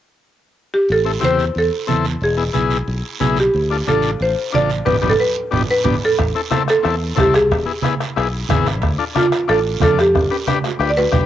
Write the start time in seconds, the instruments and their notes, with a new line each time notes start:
0.74 marimba G4
0.89 fingered electric bass A1, marimba A4, long guiro
1.05 transistor combo organ C4 E4 A4
1.20 fingered electric bass E2, transistor combo organ C4 E4 G4, high conga, short guiro
1.25 marimba C5
1.39 short guiro
1.55 fingered electric bass E2, marimba A4, long guiro
1.87 fingered electric bass E2, transistor combo organ C4 E4 A4, high conga, short guiro
2.05 short guiro
2.21 fingered electric bass E1, marimba G#4, long guiro
2.37 transistor combo organ B3 E4 G#4
2.53 fingered electric bass B1, transistor combo organ B3 E4 G#4, high conga, short guiro
2.70 short guiro
2.88 fingered electric bass B1, long guiro
3.20 fingered electric bass B1, transistor combo organ B3 E4 G#4, high conga, short guiro
3.37 marimba G4, short guiro
3.54 fingered electric bass D2, long guiro
3.70 transistor combo organ D4 F4 A4
3.86 fingered electric bass A1, transistor combo organ D4 F4 A4, marimba A4, high conga, short guiro
4.02 short guiro
4.20 fingered electric bass A1, marimba C5, long guiro
4.52 fingered electric bass A1, transistor combo organ D4 F4 A4, marimba D5, high conga, short guiro
4.70 short guiro
4.85 fingered electric bass G1, transistor combo organ B3 D4 G4, marimba B4, low conga, long guiro
5.02 fingered electric bass G1, transistor combo organ B3 D4 G4, low conga, long guiro
5.09 marimba A4
5.20 marimba B4
5.51 fingered electric bass G1, transistor combo organ B3 D4 G4, low conga, long guiro
5.71 marimba B4
5.84 fingered electric bass G1, transistor combo organ B3 D4 G4, low conga, long guiro
6.05 marimba A4
6.18 fingered electric bass A1, bombo low, bombo rim, high timbale, long guiro
6.35 transistor combo organ C4 E4 A4
6.50 transistor combo organ C4 E4 A4, bombo rim, high conga, high timbale, short guiro
6.68 marimba A4, bombo rim, high timbale, short guiro
6.83 fingered electric bass E2, transistor combo organ C4 E4 A4, bombo rim, high timbale, long guiro
7.16 fingered electric bass C2, transistor combo organ C4 E4 A4, bombo low, bombo rim, high conga, high timbale, short guiro
7.20 marimba G4
7.34 marimba G#4, bombo rim, high timbale, short guiro
7.51 fingered electric bass E1, bombo low, bombo rim, high timbale, long guiro
7.66 transistor combo organ B3 E4 G#4
7.82 transistor combo organ B3 E4 G#4, bombo rim, high conga, high timbale, short guiro
8.00 bombo rim, high timbale, short guiro
8.16 fingered electric bass B1, transistor combo organ B3 E4 G#4, bombo rim, high timbale, long guiro
8.49 fingered electric bass G#1, transistor combo organ B3 E4 G#4, bombo low, bombo rim, high conga, high timbale, short guiro
8.66 bombo rim, high timbale, short guiro
8.82 fingered electric bass D2, bombo low, bombo rim, high timbale, long guiro
8.98 transistor combo organ D4 F4 A4
9.15 transistor combo organ D4 F4 A4, marimba F4, bombo rim, high conga, high timbale, short guiro
9.32 bombo rim, high timbale, short guiro
9.48 fingered electric bass A1, transistor combo organ D4 F4 A4, marimba A4, bombo rim, high timbale, long guiro
9.80 fingered electric bass F2, transistor combo organ D4 F4 A4, marimba A4, bombo low, bombo rim, high conga, high timbale, short guiro
9.99 marimba G4, bombo rim, high timbale, short guiro
10.15 fingered electric bass G1, bombo low, bombo rim, high timbale, long guiro
10.30 transistor combo organ D4 G4 B4, high timbale
10.47 transistor combo organ D4 G4 B4, bombo rim, high conga, high timbale, short guiro
10.64 bombo rim, low timbale, short guiro
10.79 fingered electric bass D2, transistor combo organ D4 G4 B4, bombo rim, low timbale, long guiro
10.90 marimba D5
10.97 marimba B4, low timbale
11.12 fingered electric bass B1, transistor combo organ D4 G4 B4, bombo low, bombo rim, high conga, short guiro